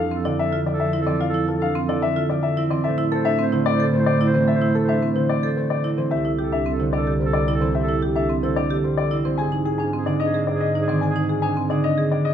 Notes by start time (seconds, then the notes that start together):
Already playing: F2
0.00 D4 F5
0.11 C4 A4
0.25 D3 E4 D5
0.39 E5
0.43 A4
0.52 F4
0.66 F3 D5
0.72 A4
0.80 E5
0.93 C4 E4
1.01 A4
1.07 E3 C4 D5
1.20 F4 F5
1.29 A4
1.34 E4
1.48 F4 A4
1.58 A4
1.62 D4 F5
1.75 C4
1.85 D3 E4 A4 D5
2.02 E5
2.14 F4 A4
2.30 F3 D5
2.43 A4 E5
2.57 C4 E4
2.70 E3 C4 D5
2.84 A2 A4 C5 E5
2.98 E4
3.12 A4 C5
3.25 D4 E5
3.39 C4 C5
3.53 D3 E4 C5
3.66 D5
3.70 C5
3.80 A4
3.93 A3 C5
3.99 C5
4.06 D5
4.21 C4 E4
4.27 C5
4.34 E3 C4 C5
4.48 A4 E5
4.56 C5
4.61 E4
4.75 A4
4.84 C5
4.89 D4 E5
5.02 C4
5.12 E4 C5
5.16 D3
5.30 D5
5.41 A4 C5
5.57 A3 C5
5.70 C5 D5
5.84 C4 E4
5.97 E3 C4 C5
6.11 C2 G4 A4 E5
6.25 E4
6.38 G4 A4
6.52 D4 E5
6.66 C4 A4
6.79 D3 E4 C5
6.93 D4 A4 D5
7.07 G4
7.20 G3 C5
7.25 A4
7.33 D5
7.48 C4 E4
7.54 A4
7.61 E3 C4 C5
7.75 G4 E5
7.83 A4
7.89 E4
8.02 G4
8.11 A4
8.15 D4 E5
8.30 C4
8.40 D3 E4 A4 C5
8.56 D4 D5
8.68 G4 A4
8.84 G3 C5
8.97 A4 D5
9.11 C4 E4
9.25 E3 C4 C5
9.38 G#2 G#4 G#5
9.52 D#4
9.65 G#4
9.78 D4 G#5
9.93 C4 G#4
10.06 D3 D#4 D5
10.20 D4 D#5
10.25 G#4
10.34 C4 G#4
10.47 G#3 D5
10.53 G#4
10.61 D#5
10.75 D4 D#4
10.81 G#4
10.88 D#3 C4 D5
11.01 G#4 G#5
11.09 G#4
11.16 D#4
11.29 G#4
11.38 G#4 G#5
11.43 D4
11.57 C4
11.67 G#4 D5
11.71 D3 D#4
11.84 D4 D#5
11.95 C4 G#4
12.11 G#3 D5
12.24 G#4 D#5